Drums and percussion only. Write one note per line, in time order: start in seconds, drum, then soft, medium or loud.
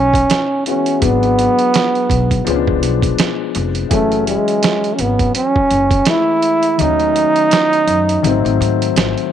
0.14 kick medium
0.14 closed hi-hat medium
0.30 snare loud
0.30 closed hi-hat medium
0.66 closed hi-hat medium
0.86 closed hi-hat medium
1.02 kick loud
1.02 closed hi-hat medium
1.23 closed hi-hat soft
1.39 closed hi-hat medium
1.59 closed hi-hat medium
1.74 snare loud
1.74 closed hi-hat medium
1.95 closed hi-hat soft
2.10 kick loud
2.10 closed hi-hat medium
2.31 kick medium
2.31 closed hi-hat medium
2.47 closed hi-hat medium
2.67 kick medium
2.83 closed hi-hat medium
3.02 kick medium
3.02 closed hi-hat medium
3.18 snare loud
3.18 closed hi-hat medium
3.55 closed hi-hat medium
3.75 closed hi-hat medium
3.91 kick loud
3.91 closed hi-hat medium
4.12 closed hi-hat soft
4.27 closed hi-hat medium
4.48 closed hi-hat soft
4.63 snare loud
4.63 closed hi-hat medium
4.84 closed hi-hat soft
4.99 closed hi-hat medium
5.19 kick medium
5.19 closed hi-hat medium
5.35 closed hi-hat medium
5.56 kick loud
5.71 closed hi-hat medium
5.91 kick loud
5.91 closed hi-hat medium
6.05 snare loud
6.05 closed hi-hat medium
6.42 closed hi-hat medium
6.63 closed hi-hat medium
6.79 closed hi-hat medium
7.00 closed hi-hat soft
7.16 closed hi-hat medium
7.36 closed hi-hat medium
7.51 snare loud
7.51 closed hi-hat medium
7.73 closed hi-hat soft
7.88 closed hi-hat medium
8.09 closed hi-hat medium
8.24 closed hi-hat medium
8.46 closed hi-hat soft
8.62 closed hi-hat medium
8.82 closed hi-hat medium
8.96 snare loud
8.96 closed hi-hat medium
9.18 closed hi-hat soft